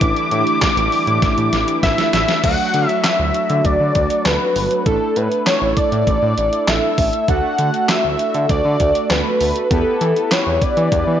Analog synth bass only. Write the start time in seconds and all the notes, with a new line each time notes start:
0.01 A1
0.31 A2
0.77 A1
1.07 A2
1.22 A1
1.38 A2
1.53 A1
1.83 A1
2.13 A1
2.44 D2
2.74 D3
3.19 D2
3.50 D3
3.65 D2
3.80 D3
3.95 D2
4.25 D2
4.56 G1
4.86 A1
5.16 A2
5.62 A1
5.92 A2
6.07 A1
6.22 A2
6.38 A1
6.68 A1
6.98 A1
7.28 D2
7.59 D3
8.04 D2
8.35 D3
8.49 D2
8.65 D3
8.80 D2
9.10 D2
9.41 D2
9.71 E2
10.01 E3
10.47 E2
10.77 E3
10.92 E2
11.07 E3